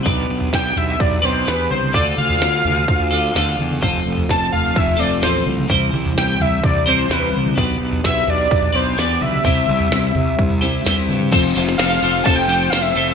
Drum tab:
CC |----------------|----------------|----------------|----------------|
RD |----------------|----------------|----------------|----------------|
SD |----o-------o---|----o-------o---|----o-------o---|----o-------o---|
T2 |--------------oo|--o---o-------oo|--------------oo|--o---o-------oo|
FT |o--o--o--o--o---|o--o--o--o--o---|o--o--o--o--o---|o--o--o--o--o---|
BD |o---o---o-------|o-------o-------|o---o---o-------|o-------o-------|

CC |----------------|----------------|x---------------|
RD |----------------|----------------|x-x-x-x-x-x-x-x-|
SD |----o-------o---|----o-------o---|---oo-------o---|
T2 |--------------oo|--o---o-------oo|----------------|
FT |o--o--o--o--o---|o--o--o--o--o---|----------------|
BD |o---o---o-------|o-------o-------|o-------o-------|